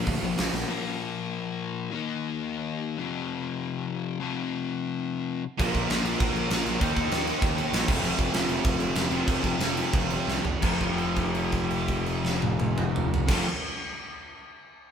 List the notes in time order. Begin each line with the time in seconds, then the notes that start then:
Already playing: A#2 F3 A#3
0.06 D2 A#2 F3, kick, open hi-hat
0.22 A#1 A#2 F3
0.38 A#1 A#2 F3, snare, open hi-hat
0.53 A#1 A#2 F3, snare
0.67 A#2 F3 A#3
1.91 D#3 A#3 D#4
2.97 F2 C3 F3
4.20 F2 C3 F3
5.58 A#1 A#2 F3 A#3, kick, crash
5.74 A#1 A#2 F3 A#3, kick, crash
5.89 A#1 A#2 F3 A#3, snare, crash
6.04 A#1 A#2 F3 A#3, crash
6.20 A#1 A#2 F3 A#3, kick, crash
6.33 A#1 A#2 F3 A#3, crash
6.50 A#1 A#2 F3 A#3, snare, crash
6.65 A#1 A#2 F3 A#3, crash
6.80 D#2 D#3 A#3 D#4, kick, crash
6.95 D#2 D#3 A#3 D#4, kick, crash
7.10 D#2 D#3 A#3 D#4, snare, crash
7.26 D#3 A#3 D#4, crash
7.42 D#2 D#3 A#3 D#4, kick, crash
7.57 D#3 A#3 D#4, crash
7.71 A#1 D#3 A#3 D#4, snare, crash
7.86 F1 F2 C3 F3, kick, crash
8.01 F1 F2 C3 F3, crash
8.17 F1 F2 C3 F3, kick, crash
8.32 F1 F2 C3 F3, snare, crash
8.48 F1 F2 C3 F3, crash
8.64 F1 F2 C3 F3, kick, crash
8.79 F1 F2 C3 F3, crash
8.95 F1 F2 C3 F3, snare, crash
9.10 F1 F2 C3 F3, crash
9.27 F1 F2 C3 F3, kick, crash
9.43 F1 F2 C3 F3, kick, crash
9.58 F1 F2 C3 F3, snare, crash
9.75 F2 C3 F3, crash
9.92 F1 F2 C3 F3, kick, crash
10.10 F2 C3 F3, crash
10.26 C2 F2 C3 F3, snare
10.43 F1 F2 C3 F3, floor tom
10.60 F1 F2 C3, kick, crash
10.64 F3
10.81 kick, crash
10.98 crash
11.16 kick, crash
11.35 crash
11.52 kick, crash
11.71 crash
11.88 kick, crash
12.06 crash
12.25 snare
12.42 high tom
12.60 high tom
12.78 mid tom
12.96 mid tom
13.14 floor tom
13.26 F1 F2 C3, kick, snare, crash
13.31 F3